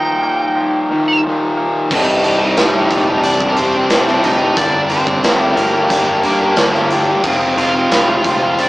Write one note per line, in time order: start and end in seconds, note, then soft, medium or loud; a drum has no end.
0.00 0.88 D#2 medium
0.00 0.90 D#2 medium
0.00 0.89 A#2 medium
0.00 0.90 D#3 medium
0.00 0.54 F3 medium
0.00 1.56 D#4 medium
0.00 1.20 G5 medium
0.23 1.56 A#3 medium
0.56 1.23 F3 medium
0.90 1.23 D#2 medium
0.90 1.23 A#2 medium
0.90 1.90 D#3 medium
0.90 1.22 D#3 medium
1.24 1.89 D#2 medium
1.24 1.90 A#2 medium
1.24 1.90 D#3 medium
1.24 1.90 F3 medium
1.57 1.90 A#3 medium
1.91 2.19 C1 loud
1.91 2.56 C2 medium
1.91 2.23 G2 medium
1.91 2.24 C3 medium
1.91 2.25 G3 medium
1.91 2.26 D4 medium
1.91 3.21 D#4 medium
1.91 3.24 D#5 medium
1.91 kick loud
1.91 crash loud
2.23 2.51 C1 medium
2.23 2.41 G2 medium
2.23 2.41 C3 medium
2.23 2.42 G3 medium
2.23 2.41 D4 medium
2.23 closed hi-hat medium
2.40 2.57 C3 medium
2.40 2.58 G3 medium
2.40 2.59 D4 medium
2.40 muted distorted electric guitar stroke soft
2.57 2.85 C1 loud
2.57 3.07 C2 medium
2.57 3.07 G2 medium
2.57 2.75 C3 medium
2.57 2.75 G3 medium
2.57 2.73 D4 medium
2.57 snare loud
2.57 closed hi-hat medium
2.74 3.08 C3 medium
2.74 3.08 G3 medium
2.74 3.06 D4 medium
2.90 3.19 C1 medium
2.90 3.40 G2 medium
2.90 3.09 C3 medium
2.90 3.09 G3 medium
2.90 3.06 D4 medium
2.90 kick medium
2.90 closed hi-hat medium
3.07 3.42 C3 medium
3.07 3.41 G3 medium
3.07 3.39 D4 medium
3.22 3.51 C1 medium
3.22 3.48 D4 medium
3.22 3.51 D5 medium
3.22 closed hi-hat medium
3.40 3.58 C3 medium
3.40 3.59 G3 medium
3.40 3.59 D4 medium
3.40 kick medium
3.50 3.57 A#4 medium
3.55 3.85 C1 medium
3.55 3.90 G2 medium
3.55 3.75 C3 medium
3.55 4.19 C4 medium
3.55 4.19 C5 medium
3.55 closed hi-hat medium
3.60 3.75 G3 medium
3.60 3.73 D4 medium
3.74 3.90 C3 medium
3.74 3.92 G3 medium
3.74 3.91 D4 medium
3.90 4.18 C1 medium
3.90 4.40 C2 medium
3.90 4.23 G2 medium
3.90 4.08 C3 medium
3.90 4.09 G3 medium
3.90 4.06 D4 medium
3.90 snare loud
3.90 closed hi-hat loud
4.07 4.24 C3 medium
4.07 4.25 G3 medium
4.07 4.26 D4 medium
4.07 snare soft
4.24 4.52 C1 medium
4.24 4.55 G2 medium
4.24 4.56 C3 medium
4.24 4.57 G3 medium
4.24 4.57 D4 medium
4.24 4.55 D#4 medium
4.24 4.57 D#5 medium
4.24 closed hi-hat medium
4.40 4.56 C3 soft
4.40 4.59 G3 medium
4.40 4.55 D4 medium
4.56 4.85 G1 medium
4.56 5.22 G2 medium
4.56 5.23 D3 medium
4.56 4.90 G3 medium
4.56 4.89 A#3 medium
4.56 4.88 D4 medium
4.56 4.91 D4 loud
4.56 4.92 G4 medium
4.56 4.90 D5 loud
4.56 kick loud
4.56 closed hi-hat loud
4.89 5.17 G1 medium
4.89 5.08 G3 medium
4.89 5.07 A#3 medium
4.89 5.53 C4 medium
4.89 5.07 D4 medium
4.89 5.08 G4 medium
4.89 5.42 C5 medium
4.89 closed hi-hat medium
5.07 5.26 G3 medium
5.07 5.26 A#3 medium
5.07 5.26 D4 medium
5.07 5.26 G4 medium
5.07 muted distorted electric guitar stroke medium
5.07 kick medium
5.23 5.51 D1 loud
5.23 5.73 G2 loud
5.23 5.74 D3 loud
5.23 5.42 G3 medium
5.23 5.41 A#3 medium
5.23 5.39 D4 loud
5.23 5.39 G4 loud
5.23 snare loud
5.23 closed hi-hat loud
5.40 5.74 G3 medium
5.40 5.73 A#3 medium
5.40 5.72 D4 medium
5.40 5.72 G4 medium
5.40 5.57 A#4 medium
5.57 5.85 G1 medium
5.57 5.76 G3 medium
5.57 6.86 A#3 medium
5.57 5.75 A#3 medium
5.57 5.74 D4 medium
5.57 5.74 G4 medium
5.57 6.86 A#4 medium
5.57 closed hi-hat medium
5.73 6.08 G3 medium
5.73 6.07 A#3 medium
5.73 6.06 D4 medium
5.73 6.06 G4 medium
5.90 6.18 G1 medium
5.90 kick medium
5.90 closed hi-hat loud
6.06 6.23 G3 medium
6.06 6.23 A#3 medium
6.06 6.24 D4 medium
6.06 6.25 G4 medium
6.23 6.51 G2 medium
6.23 6.42 G3 medium
6.23 6.41 A#3 medium
6.23 6.40 D4 medium
6.23 6.40 G4 medium
6.23 closed hi-hat medium
6.41 6.56 G3 medium
6.41 6.56 A#3 medium
6.41 6.57 D4 medium
6.41 6.58 G4 medium
6.56 7.13 G1 loud
6.56 7.07 G2 medium
6.56 7.07 D3 medium
6.56 6.75 G3 loud
6.56 6.74 A#3 medium
6.56 6.73 D4 medium
6.56 6.73 G4 medium
6.56 snare loud
6.56 closed hi-hat loud
6.74 6.90 G3 medium
6.74 6.90 A#3 medium
6.74 6.91 D4 medium
6.74 6.92 G4 medium
6.74 snare soft
6.90 7.24 G3 medium
6.90 7.22 A#3 medium
6.90 7.23 D4 medium
6.90 7.25 G4 medium
6.90 closed hi-hat medium
7.08 7.25 G3 soft
7.08 7.23 A#3 medium
7.08 7.23 D4 medium
7.08 7.26 G4 medium
7.23 7.52 F1 loud
7.23 7.89 F2 medium
7.23 7.89 C3 medium
7.23 7.56 F3 loud
7.23 7.57 G#3 medium
7.23 7.57 C4 loud
7.23 7.58 F4 loud
7.23 kick loud
7.23 crash medium
7.56 7.84 F1 medium
7.56 7.74 F3 medium
7.56 7.73 G#3 medium
7.56 7.73 C4 medium
7.56 8.54 F4 medium
7.56 7.74 F4 medium
7.56 closed hi-hat medium
7.60 8.62 F5 loud
7.74 7.92 G#3 medium
7.74 7.93 C4 medium
7.74 7.94 F4 medium
7.74 muted distorted electric guitar stroke soft
7.78 7.93 F3 medium
7.90 8.18 F1 loud
7.90 8.40 F2 medium
7.90 8.41 C3 medium
7.90 8.09 F3 loud
7.90 8.08 G#3 loud
7.90 8.07 C4 medium
7.90 8.06 F4 loud
7.90 snare loud
7.90 closed hi-hat loud
8.07 8.42 F3 medium
8.07 8.41 G#3 medium
8.07 8.41 C4 medium
8.07 8.39 F4 medium
8.24 8.52 F1 medium
8.24 8.46 F3 medium
8.24 kick medium
8.24 closed hi-hat medium
8.28 8.45 G#3 medium
8.28 8.44 C4 medium
8.28 8.44 F4 medium
8.41 8.69 F3 medium
8.41 8.69 G#3 medium
8.41 8.69 C4 medium
8.41 8.69 F4 medium
8.45 8.69 F3 medium
8.45 8.69 G#3 medium
8.45 8.69 F4 medium
8.56 8.69 F1 medium
8.56 8.69 D4 medium
8.56 closed hi-hat medium
8.60 8.69 D5 loud